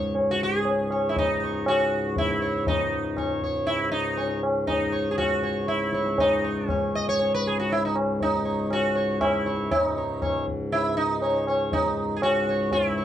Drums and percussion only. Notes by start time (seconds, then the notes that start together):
0.15 tabla tin
0.65 tabla tin
0.91 tabla na
1.16 tabla tin, tabla ge
1.66 tabla na
2.16 tabla tin, tabla ge
2.67 tabla tin, tabla ge
3.17 tabla na, tabla ge
3.42 tabla ge
3.67 tabla tin
4.18 tabla tin
4.43 tabla na
4.68 tabla tin, tabla ge
5.18 tabla na, tabla ge
5.42 tabla te
5.68 tabla te
5.81 tabla te
5.93 tabla ke
6.06 tabla te
6.18 tabla tin, tabla ge
6.69 tabla na, tabla ge
6.94 tabla ge
7.20 tabla tin
7.70 tabla tin
7.96 tabla na
8.20 tabla tin, tabla ge
8.71 tabla na
9.21 tabla na, tabla ge
9.46 tabla te
9.71 tabla tin, tabla ge
10.22 tabla na, tabla ge
10.48 tabla ge
10.72 tabla tin
11.22 tabla tin
11.47 tabla na
11.72 tabla tin, tabla ge
12.22 tabla na
12.71 tabla tin, tabla ge